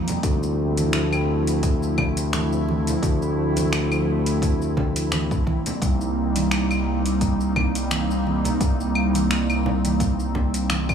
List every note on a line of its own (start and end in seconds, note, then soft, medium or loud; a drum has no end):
0.00 0.16 F2 medium
0.00 10.95 C3 medium
0.00 0.20 G3 medium
0.00 0.20 A#3 medium
0.00 0.20 C4 medium
0.00 0.20 D#4 medium
0.08 closed hi-hat medium
0.08 low conga medium
0.08 shaker medium
0.23 2.95 D2 loud
0.23 5.43 F3 medium
0.23 5.43 A3 medium
0.23 10.95 C4 medium
0.23 5.43 E4 medium
0.23 kick loud
0.23 closed hi-hat soft
0.23 shaker medium
0.43 shaker soft
0.77 closed hi-hat soft
0.77 high conga medium
0.77 shaker medium
0.93 finger snap medium
0.93 closed hi-hat soft
0.93 shaker medium
1.13 claves medium
1.13 shaker soft
1.47 closed hi-hat soft
1.47 shaker medium
1.63 kick loud
1.63 closed hi-hat soft
1.63 shaker medium
1.83 shaker soft
1.98 kick medium
1.98 low conga medium
1.98 claves medium
2.17 closed hi-hat soft
2.17 shaker medium
2.33 finger snap medium
2.33 closed hi-hat soft
2.33 high conga medium
2.33 shaker medium
2.53 shaker soft
2.69 high conga medium
2.87 closed hi-hat soft
2.87 low conga medium
2.87 shaker medium
3.03 5.39 D2 medium
3.03 kick loud
3.03 closed hi-hat soft
3.03 shaker medium
3.22 shaker soft
3.56 closed hi-hat medium
3.56 high conga medium
3.56 shaker medium
3.73 finger snap medium
3.73 closed hi-hat soft
3.73 shaker medium
3.92 claves medium
3.92 shaker soft
4.26 closed hi-hat soft
4.26 shaker medium
4.42 kick loud
4.42 closed hi-hat soft
4.42 shaker medium
4.62 shaker soft
4.77 kick medium
4.77 low conga medium
4.96 closed hi-hat medium
4.96 shaker medium
5.12 finger snap medium
5.12 closed hi-hat soft
5.12 high conga medium
5.12 shaker soft
5.31 kick loud
5.31 shaker soft
5.47 10.95 G3 medium
5.47 10.95 A#3 medium
5.47 10.95 D#4 medium
5.47 kick medium
5.47 high conga medium
5.66 closed hi-hat soft
5.66 low conga medium
5.66 shaker medium
5.82 8.53 C2 medium
5.82 kick loud
5.82 closed hi-hat soft
5.82 shaker medium
6.01 shaker soft
6.36 closed hi-hat medium
6.36 high conga medium
6.36 shaker medium
6.51 finger snap medium
6.51 closed hi-hat soft
6.51 shaker soft
6.71 claves medium
6.71 shaker soft
7.06 closed hi-hat medium
7.06 shaker medium
7.21 kick loud
7.21 closed hi-hat soft
7.21 shaker soft
7.41 shaker soft
7.56 kick medium
7.56 low conga medium
7.56 claves medium
7.75 closed hi-hat medium
7.75 shaker medium
7.91 finger snap medium
7.91 closed hi-hat soft
7.91 high conga medium
7.91 shaker medium
8.11 shaker soft
8.27 high conga medium
8.45 closed hi-hat medium
8.45 low conga medium
8.45 shaker medium
8.61 10.95 C2 medium
8.61 kick loud
8.61 closed hi-hat soft
8.61 shaker medium
8.80 shaker soft
8.95 claves medium
9.14 closed hi-hat medium
9.14 high conga medium
9.14 shaker medium
9.31 finger snap loud
9.31 closed hi-hat soft
9.31 shaker soft
9.50 claves medium
9.50 shaker soft
9.66 low conga medium
9.85 closed hi-hat medium
9.85 high conga medium
9.85 shaker medium
10.00 kick loud
10.00 closed hi-hat soft
10.00 shaker medium
10.20 shaker soft
10.35 kick medium
10.35 low conga medium
10.54 closed hi-hat medium
10.54 shaker medium
10.70 finger snap loud
10.70 closed hi-hat soft
10.70 high conga medium
10.70 shaker medium
10.89 kick medium
10.89 claves medium
10.89 shaker soft